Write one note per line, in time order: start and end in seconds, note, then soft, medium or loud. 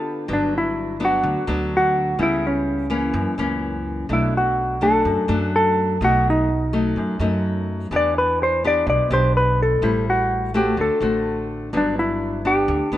0.00 0.26 D3 medium
0.00 0.25 B3 medium
0.00 0.25 F4 medium
0.00 0.25 A4 medium
0.28 1.20 G1 medium
0.28 1.21 G2 medium
0.28 0.96 F#3 medium
0.28 0.96 B3 soft
0.28 0.96 D4 medium
0.33 0.55 D4 medium
0.58 1.04 E4 loud
1.00 1.44 F#3 medium
1.00 1.44 B3 medium
1.00 1.44 D4 medium
1.05 1.76 F#4 loud
1.23 1.34 D2 loud
1.23 2.17 D3 soft
1.47 2.15 D2 medium
1.47 2.15 F#3 medium
1.47 2.15 B3 medium
1.47 2.16 D4 medium
1.77 2.19 F#4 loud
2.18 3.10 C#2 medium
2.18 3.12 C#3 medium
2.18 2.86 G3 medium
2.18 2.87 B3 medium
2.18 2.87 E4 medium
2.23 2.45 E4 loud
2.47 3.84 C#4 medium
2.90 3.34 E3 medium
2.90 3.34 A#3 medium
2.90 3.34 C#4 medium
3.14 3.25 F#2 loud
3.14 4.07 F#2 medium
3.38 4.06 C#2 medium
3.38 4.06 E3 medium
3.38 4.06 A#3 medium
3.38 4.06 C#4 medium
4.09 5.01 B1 loud
4.09 5.02 B2 medium
4.09 4.77 F#3 soft
4.09 4.77 A3 soft
4.09 4.78 D4 medium
4.13 4.36 E4 loud
4.37 4.84 F#4 loud
4.81 5.25 F#3 medium
4.81 5.25 A3 medium
4.81 5.25 D4 medium
4.81 5.55 A4 medium
5.05 5.16 F#2 medium
5.05 5.98 F#2 medium
5.28 5.96 F#2 medium
5.28 5.96 F#3 medium
5.28 5.96 A3 medium
5.28 5.97 D4 medium
5.56 6.03 A4 loud
6.01 6.92 B1 medium
6.01 6.94 B2 medium
6.01 6.49 F#3 medium
6.01 6.49 A3 medium
6.01 6.49 D#4 medium
6.01 6.27 F#4 loud
6.30 7.66 D#4 medium
6.73 7.16 F#3 medium
6.73 7.16 A3 medium
6.73 7.17 D#4 medium
6.96 7.07 F#2 medium
6.96 7.89 F#2 medium
7.19 7.87 F#2 loud
7.19 7.88 F#3 medium
7.19 7.88 A3 medium
7.19 7.88 D#4 medium
7.91 8.82 E2 loud
7.91 8.84 E3 medium
7.91 8.59 B3 soft
7.91 8.59 D4 soft
7.91 8.60 G4 medium
7.96 8.18 D5 loud
8.18 8.41 B4 medium
8.43 8.65 C5 medium
8.64 9.07 B3 medium
8.64 9.07 D4 medium
8.64 9.08 G4 medium
8.64 8.88 D5 medium
8.87 8.98 B1 loud
8.87 9.80 B2 medium
8.87 9.13 D5 medium
9.10 9.78 B1 loud
9.10 9.78 B3 medium
9.10 9.78 D4 medium
9.10 9.79 G4 medium
9.10 9.36 C5 medium
9.37 9.60 B4 medium
9.62 10.09 A4 medium
9.82 10.73 A1 medium
9.82 10.75 A2 medium
9.82 10.50 G3 medium
9.82 10.50 C4 medium
9.82 10.50 E4 medium
10.10 10.56 F#4 medium
10.54 10.98 A3 medium
10.54 10.98 C4 medium
10.54 10.98 F#4 medium
10.54 10.80 G4 medium
10.77 10.88 D2 medium
10.77 11.71 D3 medium
10.81 11.47 A4 medium
11.00 11.68 A1 medium
11.00 11.69 A3 medium
11.00 11.69 C4 medium
11.00 11.69 F#4 medium
11.73 12.64 G1 medium
11.73 12.66 G2 medium
11.73 12.41 F#3 medium
11.73 12.41 B3 medium
11.73 12.41 D4 medium
11.77 11.99 D4 medium
11.99 12.47 E4 medium
12.45 12.89 B3 medium
12.45 12.88 D4 medium
12.45 12.98 G4 medium
12.68 12.79 D2 loud
12.68 12.98 D3 medium
12.92 12.98 D2 medium
12.92 12.98 B3 medium
12.92 12.98 D4 medium